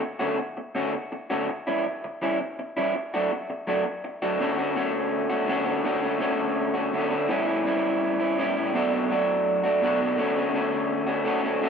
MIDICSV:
0, 0, Header, 1, 3, 480
1, 0, Start_track
1, 0, Key_signature, 2, "major"
1, 0, Tempo, 364742
1, 24, Time_signature, 4, 2, 24, 8
1, 5784, Tempo, 360794
1, 15492, End_track
2, 0, Start_track
2, 0, Title_t, "Clean electric guitar"
2, 0, Program_c, 0, 27
2, 255, Note_on_c, 0, 66, 79
2, 264, Note_on_c, 0, 61, 71
2, 268, Note_on_c, 0, 57, 78
2, 272, Note_on_c, 0, 50, 68
2, 497, Note_off_c, 0, 50, 0
2, 499, Note_off_c, 0, 57, 0
2, 501, Note_off_c, 0, 66, 0
2, 502, Note_off_c, 0, 61, 0
2, 984, Note_on_c, 0, 57, 78
2, 986, Note_on_c, 0, 50, 73
2, 995, Note_on_c, 0, 61, 80
2, 997, Note_on_c, 0, 66, 83
2, 1226, Note_off_c, 0, 57, 0
2, 1227, Note_off_c, 0, 50, 0
2, 1229, Note_off_c, 0, 66, 0
2, 1232, Note_off_c, 0, 61, 0
2, 1712, Note_on_c, 0, 66, 79
2, 1715, Note_on_c, 0, 61, 70
2, 1725, Note_on_c, 0, 57, 76
2, 1729, Note_on_c, 0, 50, 68
2, 1951, Note_off_c, 0, 66, 0
2, 1953, Note_off_c, 0, 61, 0
2, 1957, Note_off_c, 0, 57, 0
2, 1960, Note_off_c, 0, 50, 0
2, 2198, Note_on_c, 0, 64, 79
2, 2201, Note_on_c, 0, 61, 77
2, 2209, Note_on_c, 0, 55, 66
2, 2212, Note_on_c, 0, 52, 75
2, 2432, Note_off_c, 0, 52, 0
2, 2434, Note_off_c, 0, 55, 0
2, 2434, Note_off_c, 0, 64, 0
2, 2436, Note_off_c, 0, 61, 0
2, 2921, Note_on_c, 0, 52, 75
2, 2930, Note_on_c, 0, 55, 70
2, 2934, Note_on_c, 0, 61, 77
2, 2936, Note_on_c, 0, 64, 83
2, 3146, Note_off_c, 0, 61, 0
2, 3146, Note_off_c, 0, 64, 0
2, 3150, Note_off_c, 0, 55, 0
2, 3156, Note_off_c, 0, 52, 0
2, 3641, Note_on_c, 0, 64, 85
2, 3649, Note_on_c, 0, 61, 75
2, 3650, Note_on_c, 0, 55, 70
2, 3659, Note_on_c, 0, 52, 73
2, 3876, Note_off_c, 0, 64, 0
2, 3879, Note_off_c, 0, 52, 0
2, 3880, Note_off_c, 0, 55, 0
2, 3880, Note_off_c, 0, 61, 0
2, 4131, Note_on_c, 0, 66, 84
2, 4132, Note_on_c, 0, 62, 77
2, 4144, Note_on_c, 0, 57, 69
2, 4147, Note_on_c, 0, 54, 74
2, 4352, Note_off_c, 0, 54, 0
2, 4357, Note_off_c, 0, 57, 0
2, 4360, Note_off_c, 0, 66, 0
2, 4361, Note_off_c, 0, 62, 0
2, 4833, Note_on_c, 0, 54, 74
2, 4840, Note_on_c, 0, 57, 78
2, 4847, Note_on_c, 0, 62, 85
2, 4850, Note_on_c, 0, 66, 80
2, 5055, Note_off_c, 0, 66, 0
2, 5056, Note_off_c, 0, 62, 0
2, 5062, Note_off_c, 0, 57, 0
2, 5065, Note_off_c, 0, 54, 0
2, 5552, Note_on_c, 0, 66, 82
2, 5554, Note_on_c, 0, 62, 76
2, 5563, Note_on_c, 0, 57, 71
2, 5570, Note_on_c, 0, 54, 70
2, 5781, Note_off_c, 0, 54, 0
2, 5784, Note_off_c, 0, 57, 0
2, 5786, Note_on_c, 0, 50, 94
2, 5787, Note_off_c, 0, 66, 0
2, 5788, Note_off_c, 0, 62, 0
2, 5800, Note_on_c, 0, 57, 97
2, 5806, Note_on_c, 0, 61, 98
2, 5815, Note_on_c, 0, 66, 100
2, 6021, Note_off_c, 0, 66, 0
2, 6026, Note_on_c, 0, 66, 73
2, 6037, Note_off_c, 0, 61, 0
2, 6042, Note_on_c, 0, 61, 68
2, 6045, Note_off_c, 0, 57, 0
2, 6051, Note_on_c, 0, 57, 56
2, 6255, Note_off_c, 0, 50, 0
2, 6260, Note_on_c, 0, 50, 73
2, 6268, Note_off_c, 0, 57, 0
2, 6274, Note_on_c, 0, 57, 82
2, 6279, Note_off_c, 0, 61, 0
2, 6285, Note_on_c, 0, 61, 80
2, 6286, Note_off_c, 0, 66, 0
2, 6291, Note_on_c, 0, 66, 82
2, 6964, Note_off_c, 0, 66, 0
2, 6980, Note_on_c, 0, 66, 79
2, 6996, Note_off_c, 0, 61, 0
2, 7002, Note_on_c, 0, 61, 64
2, 7004, Note_off_c, 0, 57, 0
2, 7010, Note_on_c, 0, 57, 61
2, 7206, Note_off_c, 0, 50, 0
2, 7222, Note_on_c, 0, 50, 102
2, 7230, Note_off_c, 0, 57, 0
2, 7235, Note_on_c, 0, 57, 93
2, 7238, Note_off_c, 0, 61, 0
2, 7241, Note_off_c, 0, 66, 0
2, 7243, Note_on_c, 0, 61, 94
2, 7257, Note_on_c, 0, 66, 114
2, 7442, Note_off_c, 0, 66, 0
2, 7458, Note_on_c, 0, 66, 82
2, 7472, Note_off_c, 0, 61, 0
2, 7477, Note_on_c, 0, 61, 61
2, 7484, Note_off_c, 0, 57, 0
2, 7489, Note_on_c, 0, 57, 60
2, 7691, Note_off_c, 0, 50, 0
2, 7707, Note_on_c, 0, 50, 94
2, 7710, Note_off_c, 0, 57, 0
2, 7715, Note_on_c, 0, 57, 93
2, 7719, Note_off_c, 0, 61, 0
2, 7721, Note_off_c, 0, 66, 0
2, 7724, Note_on_c, 0, 61, 92
2, 7737, Note_on_c, 0, 66, 93
2, 7938, Note_off_c, 0, 66, 0
2, 7954, Note_on_c, 0, 66, 67
2, 7955, Note_off_c, 0, 61, 0
2, 7961, Note_on_c, 0, 61, 71
2, 7977, Note_off_c, 0, 57, 0
2, 7982, Note_on_c, 0, 57, 60
2, 8167, Note_off_c, 0, 50, 0
2, 8183, Note_on_c, 0, 50, 82
2, 8187, Note_off_c, 0, 57, 0
2, 8191, Note_off_c, 0, 66, 0
2, 8192, Note_on_c, 0, 57, 92
2, 8194, Note_off_c, 0, 61, 0
2, 8200, Note_on_c, 0, 61, 90
2, 8207, Note_on_c, 0, 66, 92
2, 8885, Note_off_c, 0, 66, 0
2, 8901, Note_off_c, 0, 61, 0
2, 8901, Note_on_c, 0, 66, 76
2, 8917, Note_on_c, 0, 61, 60
2, 8923, Note_off_c, 0, 57, 0
2, 8928, Note_on_c, 0, 57, 64
2, 9134, Note_off_c, 0, 50, 0
2, 9150, Note_on_c, 0, 50, 102
2, 9155, Note_off_c, 0, 61, 0
2, 9158, Note_off_c, 0, 57, 0
2, 9162, Note_off_c, 0, 66, 0
2, 9163, Note_on_c, 0, 57, 102
2, 9171, Note_on_c, 0, 61, 102
2, 9178, Note_on_c, 0, 66, 105
2, 9372, Note_off_c, 0, 66, 0
2, 9387, Note_off_c, 0, 61, 0
2, 9388, Note_on_c, 0, 66, 66
2, 9403, Note_on_c, 0, 61, 72
2, 9413, Note_off_c, 0, 57, 0
2, 9419, Note_on_c, 0, 57, 62
2, 9615, Note_off_c, 0, 66, 0
2, 9616, Note_off_c, 0, 50, 0
2, 9622, Note_off_c, 0, 61, 0
2, 9629, Note_on_c, 0, 45, 92
2, 9637, Note_on_c, 0, 52, 96
2, 9643, Note_off_c, 0, 57, 0
2, 9648, Note_on_c, 0, 55, 87
2, 9654, Note_on_c, 0, 61, 113
2, 9659, Note_on_c, 0, 64, 93
2, 9859, Note_off_c, 0, 64, 0
2, 9875, Note_off_c, 0, 61, 0
2, 9875, Note_on_c, 0, 64, 67
2, 9891, Note_off_c, 0, 55, 0
2, 9891, Note_on_c, 0, 61, 69
2, 9907, Note_on_c, 0, 55, 61
2, 10101, Note_off_c, 0, 52, 0
2, 10110, Note_off_c, 0, 45, 0
2, 10114, Note_off_c, 0, 55, 0
2, 10117, Note_on_c, 0, 52, 82
2, 10125, Note_off_c, 0, 61, 0
2, 10130, Note_on_c, 0, 55, 87
2, 10134, Note_off_c, 0, 64, 0
2, 10141, Note_on_c, 0, 61, 90
2, 10150, Note_on_c, 0, 64, 77
2, 10823, Note_off_c, 0, 64, 0
2, 10837, Note_off_c, 0, 61, 0
2, 10839, Note_on_c, 0, 64, 79
2, 10852, Note_off_c, 0, 55, 0
2, 10853, Note_on_c, 0, 61, 64
2, 10868, Note_on_c, 0, 55, 61
2, 11073, Note_off_c, 0, 52, 0
2, 11082, Note_on_c, 0, 45, 95
2, 11088, Note_off_c, 0, 55, 0
2, 11088, Note_off_c, 0, 61, 0
2, 11095, Note_on_c, 0, 52, 97
2, 11101, Note_off_c, 0, 64, 0
2, 11104, Note_on_c, 0, 55, 95
2, 11104, Note_on_c, 0, 61, 113
2, 11117, Note_on_c, 0, 64, 114
2, 11303, Note_off_c, 0, 64, 0
2, 11318, Note_off_c, 0, 61, 0
2, 11319, Note_on_c, 0, 64, 70
2, 11331, Note_off_c, 0, 55, 0
2, 11334, Note_on_c, 0, 61, 60
2, 11346, Note_on_c, 0, 55, 62
2, 11540, Note_off_c, 0, 64, 0
2, 11541, Note_off_c, 0, 45, 0
2, 11547, Note_off_c, 0, 61, 0
2, 11548, Note_off_c, 0, 52, 0
2, 11554, Note_off_c, 0, 55, 0
2, 11557, Note_on_c, 0, 47, 88
2, 11563, Note_on_c, 0, 54, 93
2, 11572, Note_on_c, 0, 57, 98
2, 11579, Note_on_c, 0, 62, 99
2, 11587, Note_on_c, 0, 66, 107
2, 11801, Note_off_c, 0, 66, 0
2, 11806, Note_on_c, 0, 66, 72
2, 11819, Note_off_c, 0, 62, 0
2, 11824, Note_on_c, 0, 62, 66
2, 11829, Note_off_c, 0, 57, 0
2, 11834, Note_on_c, 0, 57, 61
2, 12033, Note_off_c, 0, 47, 0
2, 12036, Note_off_c, 0, 54, 0
2, 12042, Note_on_c, 0, 54, 86
2, 12048, Note_off_c, 0, 57, 0
2, 12053, Note_on_c, 0, 57, 74
2, 12061, Note_off_c, 0, 62, 0
2, 12066, Note_on_c, 0, 62, 83
2, 12071, Note_off_c, 0, 66, 0
2, 12076, Note_on_c, 0, 66, 90
2, 12751, Note_off_c, 0, 66, 0
2, 12756, Note_on_c, 0, 66, 77
2, 12767, Note_off_c, 0, 62, 0
2, 12772, Note_on_c, 0, 62, 68
2, 12787, Note_off_c, 0, 57, 0
2, 12792, Note_on_c, 0, 57, 61
2, 12999, Note_on_c, 0, 47, 97
2, 13004, Note_off_c, 0, 54, 0
2, 13009, Note_off_c, 0, 57, 0
2, 13009, Note_on_c, 0, 54, 106
2, 13015, Note_on_c, 0, 57, 95
2, 13018, Note_off_c, 0, 62, 0
2, 13024, Note_on_c, 0, 62, 99
2, 13027, Note_off_c, 0, 66, 0
2, 13032, Note_on_c, 0, 66, 107
2, 13241, Note_off_c, 0, 66, 0
2, 13246, Note_on_c, 0, 66, 74
2, 13254, Note_off_c, 0, 62, 0
2, 13259, Note_on_c, 0, 62, 68
2, 13271, Note_off_c, 0, 57, 0
2, 13276, Note_on_c, 0, 57, 59
2, 13459, Note_off_c, 0, 47, 0
2, 13470, Note_off_c, 0, 54, 0
2, 13475, Note_on_c, 0, 50, 89
2, 13476, Note_off_c, 0, 57, 0
2, 13481, Note_on_c, 0, 57, 83
2, 13491, Note_off_c, 0, 62, 0
2, 13493, Note_off_c, 0, 66, 0
2, 13496, Note_on_c, 0, 61, 87
2, 13499, Note_on_c, 0, 66, 97
2, 13716, Note_off_c, 0, 66, 0
2, 13722, Note_on_c, 0, 66, 77
2, 13725, Note_off_c, 0, 61, 0
2, 13731, Note_on_c, 0, 61, 71
2, 13745, Note_off_c, 0, 57, 0
2, 13751, Note_on_c, 0, 57, 62
2, 13952, Note_off_c, 0, 50, 0
2, 13957, Note_on_c, 0, 50, 78
2, 13964, Note_off_c, 0, 57, 0
2, 13969, Note_on_c, 0, 57, 79
2, 13975, Note_off_c, 0, 61, 0
2, 13980, Note_off_c, 0, 66, 0
2, 13981, Note_on_c, 0, 61, 86
2, 13985, Note_on_c, 0, 66, 83
2, 14644, Note_off_c, 0, 66, 0
2, 14660, Note_on_c, 0, 66, 67
2, 14672, Note_off_c, 0, 61, 0
2, 14677, Note_on_c, 0, 61, 68
2, 14688, Note_off_c, 0, 57, 0
2, 14693, Note_on_c, 0, 57, 59
2, 14885, Note_off_c, 0, 50, 0
2, 14901, Note_on_c, 0, 50, 87
2, 14912, Note_off_c, 0, 57, 0
2, 14916, Note_off_c, 0, 61, 0
2, 14917, Note_on_c, 0, 57, 99
2, 14920, Note_off_c, 0, 66, 0
2, 14921, Note_on_c, 0, 61, 103
2, 14936, Note_on_c, 0, 66, 105
2, 15136, Note_off_c, 0, 66, 0
2, 15152, Note_on_c, 0, 66, 75
2, 15166, Note_off_c, 0, 61, 0
2, 15172, Note_on_c, 0, 61, 69
2, 15179, Note_off_c, 0, 57, 0
2, 15184, Note_on_c, 0, 57, 61
2, 15377, Note_off_c, 0, 50, 0
2, 15393, Note_on_c, 0, 50, 97
2, 15403, Note_off_c, 0, 57, 0
2, 15407, Note_off_c, 0, 66, 0
2, 15409, Note_on_c, 0, 57, 94
2, 15413, Note_off_c, 0, 61, 0
2, 15418, Note_on_c, 0, 61, 105
2, 15423, Note_on_c, 0, 66, 100
2, 15492, Note_off_c, 0, 50, 0
2, 15492, Note_off_c, 0, 57, 0
2, 15492, Note_off_c, 0, 61, 0
2, 15492, Note_off_c, 0, 66, 0
2, 15492, End_track
3, 0, Start_track
3, 0, Title_t, "Muted clean electric guitar strokes"
3, 29, Note_on_c, 9, 29, 37
3, 160, Note_off_c, 9, 29, 0
3, 513, Note_on_c, 9, 29, 40
3, 644, Note_off_c, 9, 29, 0
3, 750, Note_on_c, 9, 29, 46
3, 881, Note_off_c, 9, 29, 0
3, 1244, Note_on_c, 9, 29, 45
3, 1376, Note_off_c, 9, 29, 0
3, 1475, Note_on_c, 9, 29, 45
3, 1606, Note_off_c, 9, 29, 0
3, 1965, Note_on_c, 9, 29, 38
3, 2097, Note_off_c, 9, 29, 0
3, 2448, Note_on_c, 9, 29, 44
3, 2580, Note_off_c, 9, 29, 0
3, 2690, Note_on_c, 9, 29, 50
3, 2822, Note_off_c, 9, 29, 0
3, 3162, Note_on_c, 9, 29, 43
3, 3293, Note_off_c, 9, 29, 0
3, 3411, Note_on_c, 9, 29, 48
3, 3542, Note_off_c, 9, 29, 0
3, 3885, Note_on_c, 9, 29, 41
3, 4016, Note_off_c, 9, 29, 0
3, 4368, Note_on_c, 9, 29, 42
3, 4500, Note_off_c, 9, 29, 0
3, 4604, Note_on_c, 9, 29, 43
3, 4736, Note_off_c, 9, 29, 0
3, 5071, Note_on_c, 9, 29, 46
3, 5202, Note_off_c, 9, 29, 0
3, 5316, Note_on_c, 9, 29, 39
3, 5447, Note_off_c, 9, 29, 0
3, 15492, End_track
0, 0, End_of_file